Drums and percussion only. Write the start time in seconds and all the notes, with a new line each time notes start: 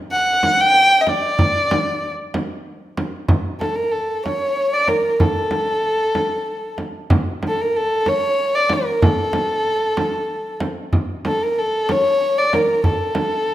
0.43 frame drum
1.07 frame drum
1.39 frame drum
1.71 frame drum
2.34 frame drum
2.97 frame drum
3.28 frame drum
3.61 frame drum
4.26 frame drum
4.88 frame drum
5.20 frame drum
5.51 frame drum
6.15 frame drum
6.78 frame drum
7.10 frame drum
7.43 frame drum
8.06 frame drum
8.69 frame drum
9.02 frame drum
9.33 frame drum
9.97 frame drum
10.60 frame drum
10.93 frame drum
11.25 frame drum
11.89 frame drum
12.53 frame drum
12.84 frame drum
13.15 frame drum